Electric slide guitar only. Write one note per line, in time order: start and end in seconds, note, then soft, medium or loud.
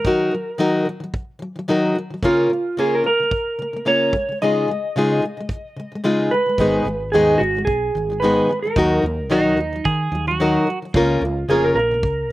0.00 0.70 A#4 medium
2.25 2.80 F4 medium
2.80 2.94 G#4 medium
2.95 3.05 A#4 medium
3.06 3.90 A#4 medium
3.88 4.42 C#5 medium
4.42 6.01 D#5 medium
6.31 7.09 B4 medium
7.12 7.38 G#4 medium
7.38 7.64 F#4 medium
7.65 8.22 G#4 medium
8.20 8.60 B4 medium
8.62 9.41 A#4 medium
10.95 11.45 F4 medium
11.50 11.64 G#4 medium
11.64 11.74 A#4 medium
11.75 12.32 A#4 medium